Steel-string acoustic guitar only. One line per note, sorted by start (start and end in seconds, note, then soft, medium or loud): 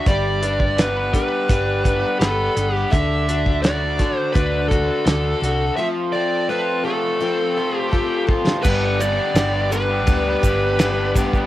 0.07 0.42 G2 medium
0.07 0.42 D3 medium
0.07 0.42 G3 medium
0.07 0.43 D4 medium
0.07 0.42 G4 medium
0.07 0.41 B4 medium
0.43 0.77 G3 soft
0.43 0.78 D4 soft
0.43 0.78 G4 soft
0.43 0.78 B4 medium
0.78 1.13 G3 medium
0.78 1.14 D4 medium
0.78 1.14 G4 medium
0.78 1.12 B4 medium
1.13 1.48 G3 soft
1.13 1.49 D4 soft
1.13 1.49 G4 soft
1.13 1.49 B4 medium
1.48 1.84 G2 medium
1.48 1.85 D3 medium
1.48 1.85 G3 medium
1.48 1.85 D4 medium
1.48 1.84 G4 medium
1.48 1.83 B4 medium
1.84 2.19 G3 soft
1.84 2.20 D4 soft
1.84 2.21 G4 soft
1.84 2.20 B4 medium
2.20 2.56 G3 medium
2.20 2.56 D4 medium
2.20 2.56 G4 medium
2.20 2.55 B4 medium
2.56 2.91 G3 soft
2.56 2.91 D4 soft
2.56 2.92 G4 medium
2.56 2.92 B4 medium
2.90 3.27 D3 medium
2.90 3.27 A3 medium
2.90 3.27 D4 medium
2.90 3.28 F#4 medium
2.90 3.26 A4 medium
3.27 3.63 D4 soft
3.27 3.63 F#4 medium
3.27 3.63 A4 medium
3.63 3.99 A3 medium
3.63 3.99 D4 medium
3.63 3.98 F#4 medium
3.63 3.97 A4 medium
3.98 4.34 D4 soft
3.98 4.34 F#4 soft
3.98 4.34 A4 medium
4.34 4.70 D3 medium
4.34 4.70 A3 medium
4.34 4.70 D4 medium
4.34 4.69 F#4 medium
4.34 4.67 A4 medium
4.68 5.05 D4 soft
4.68 5.06 F#4 soft
4.68 5.05 A4 soft
5.05 5.42 A3 medium
5.05 5.42 D4 medium
5.05 5.42 F#4 medium
5.05 5.39 A4 medium
5.40 5.78 F#4 soft
5.40 5.77 A4 medium
5.44 5.77 D4 soft
5.77 6.13 F3 medium
5.77 6.14 A3 medium
5.77 6.14 C4 medium
5.77 6.14 F4 medium
5.77 6.11 A4 medium
6.13 6.49 C4 soft
6.13 6.50 F4 soft
6.13 6.49 A4 medium
6.49 6.85 A3 medium
6.49 6.86 C4 medium
6.49 6.85 F4 medium
6.49 6.83 A4 medium
6.84 7.20 C4 soft
6.84 7.20 F4 soft
6.84 7.21 A4 medium
7.21 7.57 F3 medium
7.21 7.57 A3 medium
7.21 7.57 C4 medium
7.21 7.57 F4 medium
7.21 7.55 A4 medium
7.57 7.91 C4 soft
7.57 7.92 F4 medium
7.57 7.93 A4 medium
7.91 8.28 A3 medium
7.91 8.29 C4 medium
7.91 8.28 F4 medium
7.91 8.26 A4 medium
8.27 8.64 C4 soft
8.27 8.64 F4 medium
8.27 8.64 A4 medium
8.62 9.00 G2 medium
8.62 9.00 D3 medium
8.62 9.00 G3 medium
8.62 9.00 B3 medium
8.62 8.99 D4 medium
8.62 8.98 G4 medium
8.99 9.33 G3 soft
8.99 9.35 B3 soft
8.99 9.35 D4 soft
8.99 9.36 G4 medium
9.35 9.71 G3 medium
9.35 9.71 B3 medium
9.35 9.70 D4 medium
9.35 9.69 G4 medium
9.70 10.07 G3 soft
9.70 10.07 B3 soft
9.70 10.07 D4 medium
9.70 10.07 G4 soft
10.06 10.43 G2 medium
10.06 10.43 D3 medium
10.06 10.44 G3 medium
10.06 10.42 B3 medium
10.06 10.42 D4 medium
10.06 10.40 G4 medium
10.42 10.76 G3 soft
10.42 10.77 B3 soft
10.42 10.79 D4 medium
10.42 10.79 G4 medium
10.77 11.14 G3 medium
10.77 11.15 B3 medium
10.77 11.14 D4 medium
10.81 11.13 G4 medium
11.14 11.46 G3 soft
11.14 11.46 B3 medium
11.14 11.46 D4 medium
11.14 11.46 G4 medium